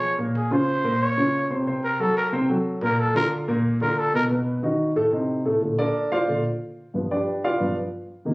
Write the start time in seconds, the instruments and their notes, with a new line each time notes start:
Already playing: grand piano F3 F4 G#4, trumpet C#5
0.18 grand piano A#2 A#3 A#4
0.37 trumpet G#4
0.51 grand piano C#3 C#4 F4, trumpet C5
0.84 grand piano A#2 A#3 A#4
1.03 trumpet C#5
1.17 grand piano C#3 C#4 F4
1.50 grand piano C3 C4 C5
1.67 grand piano C3 C4 C5
1.84 trumpet A#4
2.00 grand piano F#3 F#4 A4, trumpet A4
2.17 trumpet A#4
2.32 grand piano C3 C4 C5
2.49 grand piano F#3 F#4 A4
2.82 grand piano A#2 A#3 A#4, trumpet A#4
3.00 trumpet A4
3.14 grand piano D3 D4 F4, trumpet A#4
3.48 grand piano A#2 A#3 A#4
3.81 grand piano D3 D4 F4, trumpet A#4
3.99 trumpet A4
4.14 grand piano B2 B3 B4, trumpet A#4
4.30 grand piano B2 B3 B4
4.63 grand piano D#3 D#4 F#4
4.96 grand piano A2 A3 A4
5.12 grand piano C3 C4 D#4
5.45 grand piano A2 A3 A4
5.61 grand piano A#2 D3 A3
5.79 grand piano D4 A4 A#4 D5
6.12 grand piano F4 C5 D5 F5
6.28 grand piano A#2 D3 A3
6.94 grand piano G2 F3 B3
7.11 grand piano D4 G4 B4 D5
7.44 grand piano F4 B4 D5 F5
7.60 grand piano G2 F3 B3
8.25 grand piano C3 D#3 A#3